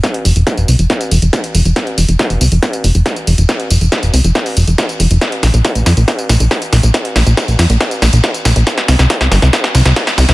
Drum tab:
HH |xxoxxxoxxxoxxxox|xxoxxxoxxxoxxxox|xxoxxxoxxooxxxox|xxoxxxoxxxoxxxox|
TB |x-xxxxxxxxxxxxxx|x-xxxxxxxxxxxxxx|x-xxxxxxxxxxxxxx|x-xxxxxxxxxxxxxx|
SD |o---o---o---o---|o---o---o---o---|o---o---o---o---|o-o-o-o-o-o-o-o-|
BD |o---o---o---o---|o---o---o---o---|o---o---o---o---|o---o---o---o---|

HH |xxoxxxoxxxoxxxox|xxoxxxoxxxoxxxox|
TB |x-xxxxxxxxxxxxxx|x-xxxxxxxxxxxxxx|
SD |o-o-o-o-o-o-o-o-|oooooooooooooooo|
BD |o---o---o---o---|o---o---o---o---|